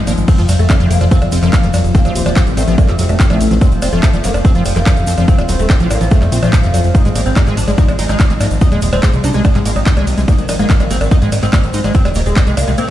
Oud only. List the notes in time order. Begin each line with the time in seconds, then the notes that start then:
Already playing: D#4
0.28 C4
0.38 F3
0.49 F3
0.59 A3
0.70 F3
0.80 F3
0.90 A#3
1.01 F3
1.11 C4
1.22 F3
1.32 F3
1.43 A#3
1.95 A#3
2.05 C3
2.16 C3
2.26 F3
2.36 C3
2.47 C3
2.57 A3
2.68 C3
2.78 A#3
2.88 C3
2.99 C3
3.09 A3
3.61 C4
3.72 F3
3.82 F3
3.93 A3
4.03 F3
4.13 F3
4.24 A#3
4.34 F3
4.45 C4
4.55 F3
4.66 F3
4.76 A#3
5.28 C4
5.38 F3
5.49 F3
5.59 A3
5.70 F3
5.80 F3
5.90 A#3
6.01 F3
6.11 A3
6.22 F3
6.32 F3
6.43 F3
6.95 D#4
7.05 G#3
7.16 G#3
7.26 C4
7.36 G#3
7.47 G#3
7.57 D4
7.68 G#3
7.78 D#4
7.88 G#3
7.99 G#3
8.09 D#4
8.61 D#4
8.72 G#3
8.82 G#3
8.93 C4
9.03 G#3
9.13 G#3
9.24 D4
9.34 G#3
9.45 D#4
9.55 G#3
9.66 G#3
9.76 D#4
10.28 D#4
10.38 D#3
10.49 D#3
10.59 A#3
10.70 D#3
10.80 D#3
10.91 C4
11.01 D#3
11.11 D#4
11.22 D#3
11.32 D#3
11.43 C4
11.95 C4
12.05 D#3
12.16 D#3
12.26 G#3
12.36 D#3
12.47 D#3
12.57 A#3
12.68 D#3
12.78 C4